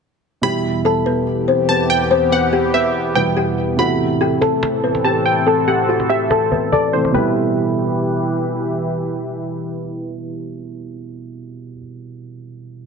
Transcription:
0.41 E2 B2 E3 G3 B3 E4 G4 G5 B5, cajon slap
0.65 cajon slap
0.85 A4 A5, cajon slap
0.96 cajon slap
1.06 B3 B4, cajon slap
1.27 cajon slap
1.48 C4 C5, cajon slap
1.69 B3 B4 A5, cajon slap
1.90 G5, cajon slap
2.11 C4 C5, cajon slap
2.32 B3 B4 F#5, cajon slap
2.39 cajon slap
2.46 cajon slap
2.53 G4 G5, cajon slap
2.64 cajon slap
2.74 B3 B4 E5, cajon slap
2.95 cajon slap
3.15 B2 E3 G3 B3 E4 B4 G5, cajon slap
3.21 cajon slap
3.27 cajon slap
3.32 cajon slap
3.37 G4 G5, cajon slap
3.58 cajon slap
3.77 A2 C3 E3 A3 C4 E4 F#4 A4 F#5 B5, cajon slap
4.00 cajon slap
4.21 G4 G5, cajon slap
4.32 cajon slap
4.41 A4 A5, cajon slap
4.63 cajon slap
4.84 B3 B4, cajon slap
4.95 cajon slap
5.04 G4 G5 A5, cajon slap
5.26 G5, cajon slap
5.47 A4 A5, cajon slap
5.68 G4 F#5 G5, cajon slap
5.73 cajon slap
5.79 cajon slap
5.84 cajon slap
5.89 F#4 F#5, cajon slap
6.00 cajon slap
6.09 G4 E5 G5, cajon slap
6.31 A4 A5, cajon slap
6.52 B3 B4, cajon bass
6.59 cajon slap
6.66 cajon slap
6.72 A4 D5 A5, cajon bass
6.93 C3 E3 A3 C4 C5, cajon slap
7.05 cajon slap
7.11 B2 E3 E4 G4 B4 G5, cajon bass
7.16 G3 E4

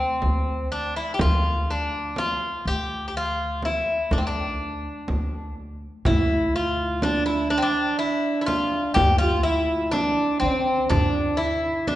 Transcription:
Already playing: C4
0.22 D2, frame drum
0.72 D4
0.96 E4
1.14 G4
1.19 D2 F4, frame drum
1.71 D4
2.16 F4, frame drum
2.65 D2 G4
3.08 G4
3.17 F4
3.62 E4, frame drum
4.11 D2 D4, frame drum
4.18 C4
4.27 D4
5.08 D2, frame drum
6.05 D2 E4, darbuka dum, frame drum
6.54 F4, darbuka ka
7.02 D4, darbuka tek, frame drum
7.26 E4
7.50 D4
7.58 C4
7.62 D4
7.99 E4, darbuka ka
8.41 E4
8.46 F4, frame drum
8.94 D2 G4, frame drum, darbuka dum
9.18 F4
9.43 E4
9.92 D4, darbuka tek, frame drum
10.40 D3 C4
10.90 D3 D4, frame drum, darbuka dum
11.37 E4, darbuka ka
11.87 D4, darbuka tek, frame drum

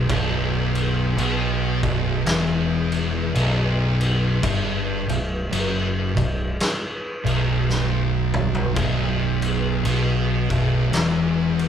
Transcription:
0.07 B0 B1, kick, crash
0.75 crash
1.17 B1 B2, crash
1.83 B0 B1, kick, crash
2.26 E1 E2, snare, crash
2.92 crash
3.34 B0 B1, crash
4.01 crash
4.43 G1 G2, kick, crash
5.08 B0 B1, crash
5.51 F#1 F#2, crash
6.16 B0 B1, kick, crash
6.60 snare, crash
7.25 B0 B1, crash
7.70 snare
8.34 mid tom
8.55 floor tom
8.76 B0 B1, kick, crash
9.42 crash
9.83 B1 B2, crash
10.49 B0 B1, kick, crash
10.93 E1 E2, snare, crash
11.59 crash

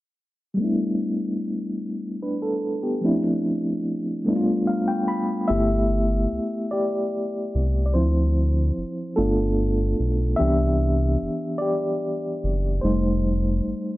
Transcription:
0.54 G3 A3
0.59 B3 D4
0.64 E4
2.23 D4 B4
2.42 A4
2.83 B3 G4
3.01 F3 A3 C4 D4
3.06 E4
4.24 G3 A3 B3 D4
4.30 E4
4.36 F4
4.67 F5
4.88 G5
5.08 B5
5.48 G1 A3 B3 E4 G4 E5
6.32 C2
6.71 G4 D5
7.55 C2
7.86 D5
7.94 D2 F3 C4 E4 C5
8.78 G1
9.16 G1 A3 B3 D4 F4 A4
10.00 B1
10.36 E3 B3 D4 G4 E5
10.41 C2
11.22 F#1
11.58 G4 D5
12.44 F#1
12.81 F1 G3 A3 D#4 C5
13.67 G1

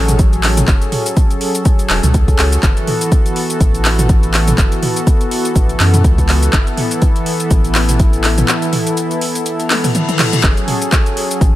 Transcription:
Already playing: A1 F#3 C#4 G#4 A4
0.08 closed hi-hat, mid tom, shaker
0.19 kick, closed hi-hat, shaker
0.33 closed hi-hat, shaker
0.43 clap, open hi-hat
0.57 closed hi-hat, mid tom, shaker
0.68 F#1, kick, clap, closed hi-hat, shaker
0.82 closed hi-hat, shaker
0.92 mid tom, open hi-hat
1.06 closed hi-hat, shaker
1.17 kick, closed hi-hat, shaker
1.30 closed hi-hat, shaker
1.41 open hi-hat
1.55 closed hi-hat, shaker
1.65 kick, closed hi-hat, shaker
1.79 closed hi-hat, shaker
1.90 E1, clap, open hi-hat
2.03 C#2, closed hi-hat, mid tom, shaker
2.14 kick, closed hi-hat, shaker
2.28 kick, closed hi-hat, shaker
2.39 C#2, clap, open hi-hat
2.52 closed hi-hat, shaker
2.63 F#1 E3 B3 F#4, kick, clap, closed hi-hat, shaker
2.77 closed hi-hat, shaker
2.87 mid tom, open hi-hat
3.01 closed hi-hat, shaker
3.12 kick, closed hi-hat, shaker
3.26 closed hi-hat, shaker
3.36 open hi-hat
3.50 closed hi-hat, shaker
3.60 A1, kick, closed hi-hat, shaker
3.74 closed hi-hat, shaker
3.85 clap, open hi-hat
3.99 closed hi-hat, mid tom, shaker
4.09 kick, closed hi-hat, shaker
4.23 closed hi-hat, shaker
4.34 clap, open hi-hat
4.48 closed hi-hat, mid tom, shaker
4.58 F#1, kick, clap, closed hi-hat, shaker
4.72 closed hi-hat, shaker
4.83 mid tom, open hi-hat
4.96 closed hi-hat, shaker
5.07 kick, closed hi-hat, shaker
5.21 closed hi-hat, shaker
5.31 open hi-hat
5.45 closed hi-hat, shaker
5.56 A1, kick, closed hi-hat, shaker
5.69 closed hi-hat, shaker
5.80 F#2, clap, open hi-hat
5.94 closed hi-hat, mid tom, shaker
6.04 C#2, kick, closed hi-hat, shaker
6.18 kick, closed hi-hat, shaker
6.29 clap, open hi-hat
6.43 closed hi-hat, shaker
6.53 F#1 E4, kick, clap, closed hi-hat, shaker
6.67 closed hi-hat, shaker
6.77 mid tom, open hi-hat
6.91 closed hi-hat, shaker
7.02 kick, closed hi-hat, shaker
7.16 closed hi-hat, shaker
7.26 open hi-hat
7.40 closed hi-hat, shaker
7.51 A1, kick, closed hi-hat, shaker
7.64 closed hi-hat, shaker
7.75 clap, open hi-hat
7.89 closed hi-hat, mid tom, shaker
8.00 kick, closed hi-hat, shaker
8.13 closed hi-hat, shaker
8.24 clap, open hi-hat
8.38 closed hi-hat, mid tom, shaker
8.48 clap, closed hi-hat, shaker
8.62 closed hi-hat, shaker
8.73 mid tom, open hi-hat
8.87 closed hi-hat, shaker
8.97 closed hi-hat, shaker
9.11 closed hi-hat, shaker
9.21 open hi-hat
9.35 closed hi-hat, shaker
9.46 closed hi-hat, reverse cymbal, shaker
9.60 closed hi-hat, shaker
9.70 clap, open hi-hat, high tom
9.84 mid tom, open hi-hat, shaker
9.95 closed hi-hat, mid tom, shaker
10.09 closed hi-hat, mid tom, shaker
10.19 clap, mid tom, open hi-hat
10.33 closed hi-hat, mid tom, shaker
10.43 F#1 F#3 C#4 G#4 A4, kick, clap, closed hi-hat, shaker
10.57 closed hi-hat, shaker
10.68 mid tom, open hi-hat
10.82 closed hi-hat, shaker
10.92 kick, clap, closed hi-hat, shaker
11.06 closed hi-hat, shaker
11.17 open hi-hat
11.31 closed hi-hat, shaker
11.41 A1, kick, closed hi-hat, shaker

